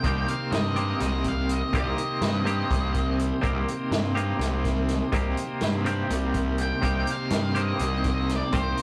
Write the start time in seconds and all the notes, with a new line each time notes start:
Already playing: A#3 C4 D#4 G4 G5
0.04 C2 C3 D#3 A#3 C4 G4, kick, closed hi-hat
0.28 F5, closed hi-hat
0.51 G2 D#5, snare, closed hi-hat
0.76 C3 D#3 A#3 C4 G4, closed hi-hat
1.00 C2 D#5, snare, closed hi-hat
1.24 F5, kick, closed hi-hat
1.49 D#5, closed hi-hat
1.73 C2 C3 D#3 A#3 C4 G4, kick, closed hi-hat
1.77 D#5
1.98 closed hi-hat
2.21 G2, snare, closed hi-hat
2.45 C3 D#3 A#3 C4 G4, closed hi-hat
2.70 C2, kick, closed hi-hat
2.94 kick, closed hi-hat
3.19 closed hi-hat
3.41 C2 C3 D#3 A#3 C4 G4, kick, closed hi-hat
3.68 closed hi-hat
3.91 G2, snare, closed hi-hat
4.15 C3 D#3 A#3 C4 G4, closed hi-hat
4.39 C2, snare, closed hi-hat
4.65 kick, snare, closed hi-hat
4.89 snare, closed hi-hat
5.12 C2 C3 D#3 A#3 C4 G4, kick, closed hi-hat
5.37 closed hi-hat
5.61 G2, snare, closed hi-hat
5.85 C3 D#3 A#3 C4 G4, closed hi-hat
6.10 C2, closed hi-hat
6.34 kick, closed hi-hat
6.58 G5, closed hi-hat
6.82 C2 C3 D#3 A#3 C4 G4, kick, closed hi-hat
7.07 closed hi-hat
7.12 F5
7.30 G2, snare, closed hi-hat
7.55 C3 D#3 A#3 C4 G4, closed hi-hat
7.61 D#5
7.79 C2, closed hi-hat
8.04 kick, closed hi-hat
8.10 D#5
8.29 snare, closed hi-hat
8.36 D5
8.52 C2 C3 D#3 A#3 C4 G4, kick, closed hi-hat
8.58 C5
8.77 closed hi-hat